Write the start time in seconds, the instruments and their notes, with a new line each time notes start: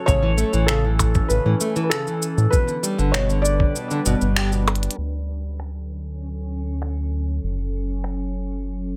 Already playing: ambient pad A4
0.06 analog synth bass A1, steel-string acoustic guitar C#3, ambient pad E3 C#4, felt piano C#5, kick, cabasa
0.23 steel-string acoustic guitar E3
0.37 steel-string acoustic guitar A3, cabasa
0.53 analog synth bass A1, steel-string acoustic guitar E3, cabasa
0.66 steel-string acoustic guitar C#3, felt piano A4, finger snap, cabasa
0.85 steel-string acoustic guitar E3
0.99 kick, cabasa, percussion blips
1.15 kick, cabasa
1.28 analog synth bass A1, steel-string acoustic guitar C#3, felt piano B4, cabasa
1.46 analog synth bass A2, steel-string acoustic guitar E3
1.60 steel-string acoustic guitar A3, cabasa
1.76 steel-string acoustic guitar E3, cabasa
1.84 felt piano B4
1.90 steel-string acoustic guitar C#3, felt piano A4, finger snap, cabasa
2.07 steel-string acoustic guitar E3, cabasa
2.22 cabasa
2.38 analog synth bass A2, cabasa
2.50 steel-string acoustic guitar B2, ambient pad G3 D4 B4, felt piano B4, kick, cabasa
2.67 steel-string acoustic guitar D3, cabasa
2.83 steel-string acoustic guitar G3, cabasa
2.98 analog synth bass G1, steel-string acoustic guitar D3, cabasa
3.12 steel-string acoustic guitar B2, felt piano C#5, finger snap, cabasa
3.29 steel-string acoustic guitar D3, cabasa
3.42 felt piano D5, cabasa
3.60 kick
3.76 steel-string acoustic guitar B2, cabasa
3.91 steel-string acoustic guitar D3, cabasa
4.06 analog synth bass G1, steel-string acoustic guitar B2, cabasa
4.21 analog synth bass G1, steel-string acoustic guitar B2, cabasa
4.36 steel-string acoustic guitar G4, finger snap, cabasa
4.52 steel-string acoustic guitar B2, cabasa
4.68 closed hi-hat, percussion blips
4.75 closed hi-hat
4.83 closed hi-hat
4.91 closed hi-hat
4.97 analog synth bass D2, ambient pad D3 F#3 A4, synth texture C#4 C#7
5.60 finger snap
6.82 finger snap
7.43 analog synth bass F#1, ambient pad F#3 C#4
8.04 finger snap